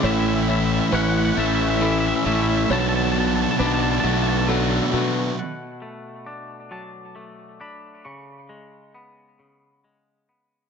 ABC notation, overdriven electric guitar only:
X:1
M:6/8
L:1/8
Q:3/8=45
K:Bdor
V:1 name="Overdriven electric guitar"
[A,,E,A,CE] [A,CE] [E,A,CE] [A,CE] [E,A,CE] [A,CE] | [B,,F,B,DF] [B,DF] [F,B,DF] [B,DF] [F,B,DF] [B,DF] | z6 | z6 |]